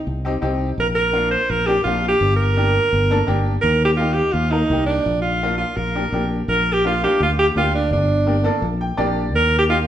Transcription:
0.07 0.35 C2 medium
0.25 0.31 C4 medium
0.25 0.32 D#4 medium
0.25 0.32 G4 medium
0.42 0.71 C2 medium
0.42 0.67 C4 medium
0.42 0.67 D#4 medium
0.42 0.67 G4 medium
0.78 1.35 A#1 medium
0.78 0.88 A#4 medium
0.95 1.29 A#4 medium
1.12 1.32 A#3 medium
1.12 1.32 D4 medium
1.12 1.32 F4 medium
1.31 1.52 C5 medium
1.50 1.78 A#1 medium
1.50 1.68 A#4 loud
1.67 1.74 A#3 medium
1.67 1.74 D4 medium
1.67 1.83 G4 medium
1.67 1.74 G4 medium
1.84 2.14 A#1 medium
1.84 2.11 A#3 medium
1.84 2.11 D4 medium
1.84 2.07 F4 medium
1.84 2.11 F4 medium
2.08 2.36 G4 medium
2.21 2.78 G1 loud
2.37 3.41 A#4 loud
2.57 2.75 A#3 medium
2.57 2.75 D4 medium
2.57 2.76 G4 medium
2.92 3.21 G1 medium
3.10 3.16 A#3 medium
3.10 3.17 D4 medium
3.10 3.17 A4 medium
3.27 3.56 G1 medium
3.27 3.52 A#3 medium
3.27 3.52 D4 medium
3.27 3.53 G4 medium
3.61 4.20 D#2 loud
3.61 3.84 A#4 loud
3.85 3.91 G4 medium
3.97 4.18 A#3 medium
3.97 4.18 D#4 medium
3.97 4.15 F4 medium
3.97 4.18 G4 medium
4.13 4.34 G4 medium
4.32 4.63 D#2 medium
4.32 4.52 F4 medium
4.51 4.58 A#3 medium
4.51 4.86 D#4 medium
4.51 4.58 D#4 medium
4.51 4.59 A#4 medium
4.70 4.99 C2 medium
4.70 4.96 A#3 medium
4.70 4.96 D#4 medium
4.70 4.96 G4 medium
4.86 5.20 D4 medium
5.06 5.63 A#1 loud
5.22 5.56 F4 medium
5.43 5.61 A#3 medium
5.43 5.61 D4 medium
5.43 5.61 F4 medium
5.58 5.78 F4 medium
5.77 6.05 A#1 medium
5.77 6.31 A#4 medium
5.95 6.01 A#3 medium
5.95 6.02 D4 medium
5.95 6.02 G4 medium
6.12 6.41 A#1 medium
6.12 6.38 A#3 medium
6.12 6.38 D4 medium
6.12 6.38 G4 medium
6.48 7.05 A#1 medium
6.48 6.74 A#4 loud
6.73 6.85 G4 medium
6.84 6.91 A#3 medium
6.84 6.91 D4 medium
6.84 6.91 F4 medium
6.84 7.02 F4 medium
7.03 7.21 A#3 medium
7.03 7.21 D4 medium
7.03 7.21 F4 medium
7.03 7.20 G4 medium
7.20 7.49 D2 medium
7.20 7.30 F4 medium
7.39 7.47 G4 medium
7.56 7.92 D2 medium
7.56 7.81 A#3 medium
7.56 7.81 D4 medium
7.56 7.73 F4 medium
7.56 7.81 G4 medium
7.75 7.91 D4 medium
7.91 8.48 G1 loud
7.91 8.59 D4 medium
8.26 8.33 A#3 medium
8.26 8.33 D4 medium
8.26 8.33 G4 medium
8.44 8.63 A#3 medium
8.44 8.63 D4 medium
8.44 8.63 A4 medium
8.62 8.91 A#1 medium
8.81 8.97 G5 medium
8.97 9.34 A#1 medium
8.97 9.23 A#3 medium
8.97 9.23 D4 medium
8.97 9.23 G4 medium
8.97 9.31 D5 medium
9.34 9.87 D#2 medium
9.34 9.57 A#4 loud
9.59 9.64 G4 medium
9.69 9.75 A#3 medium
9.69 9.75 D#4 medium
9.69 9.78 F4 medium
9.69 9.76 G4 medium

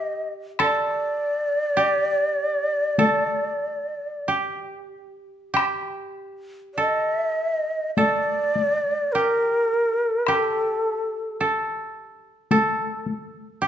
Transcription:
0.00 1.51 G4 medium
0.00 0.25 A4 medium
0.00 0.30 D#5 medium
0.59 2.50 A4 medium
0.59 4.27 D5 medium
0.59 taiko rim soft
1.77 3.81 G4 medium
2.98 4.89 A4 medium
2.98 taiko high soft
4.28 5.53 G4 medium
5.54 7.58 G4 medium
5.54 taiko rim soft
6.75 7.97 A4 medium
6.75 7.16 D#5 medium
7.16 7.28 E5 medium
7.28 7.91 D#5 medium
7.96 9.88 A4 medium
7.96 9.14 D5 medium
7.96 taiko high soft
8.56 taiko high soft
9.12 10.28 G4 medium
9.12 10.28 A#4 medium
10.26 12.32 G4 medium
10.26 11.38 A4 medium
10.26 taiko rim medium
11.41 12.51 A4 medium
12.51 13.68 A4 medium
12.51 taiko high medium
13.06 taiko high soft
13.62 13.68 G4 medium

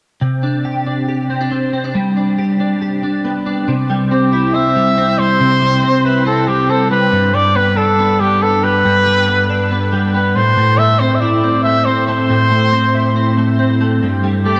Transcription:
0.21 1.95 C3 medium
0.43 0.86 D4 medium
0.65 1.08 G4 medium
0.86 1.29 D4 medium
1.08 2.38 G4 medium
1.30 1.41 C4 medium
1.41 1.73 D4 soft
1.51 1.72 C4 medium
1.73 1.84 C4 soft
1.84 1.99 D4 soft
1.95 3.68 G3 medium
2.17 2.59 D4 medium
2.38 2.81 G4 medium
2.60 3.02 D4 medium
2.82 4.32 G4 medium
3.03 3.45 D4 medium
3.25 3.72 B3 soft
3.46 3.72 D4 medium
3.68 5.39 C3 medium
3.90 4.76 G3 medium
4.11 4.53 C4 medium
4.11 4.56 G4 medium
4.33 6.04 E4 medium
4.54 4.96 C4 medium
4.54 5.20 E5 loud
4.76 5.18 G3 medium
4.98 5.82 C4 medium
5.19 5.61 G3 medium
5.19 6.07 C5 loud
5.40 7.13 C3 medium
5.62 6.48 G3 medium
5.83 6.25 C4 medium
6.05 7.17 E4 medium
6.05 6.26 B4 medium
6.26 6.68 C4 medium
6.26 6.49 A4 medium
6.48 6.91 G3 medium
6.48 6.72 G4 medium
6.69 7.17 C4 medium
6.69 6.90 A4 medium
6.91 7.34 G3 medium
6.91 7.36 B4 loud
7.12 8.84 G2 medium
7.34 8.19 G3 medium
7.34 7.57 D5 medium
7.55 7.98 B3 medium
7.55 7.78 B4 medium
7.77 9.48 D4 medium
7.77 8.22 A4 medium
7.99 8.41 B3 medium
8.20 8.62 G3 medium
8.20 8.44 G4 medium
8.42 9.27 B3 medium
8.42 8.65 A4 medium
8.64 9.06 G3 medium
8.64 9.93 B4 loud
8.85 10.36 G2 medium
9.07 9.91 G3 medium
9.28 9.70 B3 medium
9.50 10.40 D4 medium
9.71 10.13 B3 medium
9.93 10.40 G3 medium
10.14 10.40 B3 medium
10.14 10.37 B4 medium
10.36 10.56 A2 medium
10.36 10.79 C5 loud
10.57 12.29 A2 medium
10.78 11.64 A3 medium
10.78 11.01 E5 loud
10.99 11.42 C4 medium
10.99 11.17 C5 medium
11.15 11.22 E5 medium
11.20 12.93 E4 medium
11.20 11.63 D5 medium
11.43 11.86 C4 medium
11.63 12.07 A3 medium
11.63 11.87 E5 loud
11.85 12.71 C4 medium
11.85 12.06 C5 medium
12.07 12.50 A3 medium
12.07 13.33 C5 loud
12.30 14.02 A2 medium
12.51 13.36 A3 medium
12.73 13.15 C4 medium
12.95 14.07 E4 medium
13.16 13.58 C4 medium
13.37 13.80 A3 medium
13.59 14.06 C4 medium
13.81 14.07 A3 medium
14.03 14.60 G2 medium
14.24 14.60 G3 medium
14.45 14.56 A3 medium
14.45 14.60 G4 medium
14.56 14.60 B3 medium

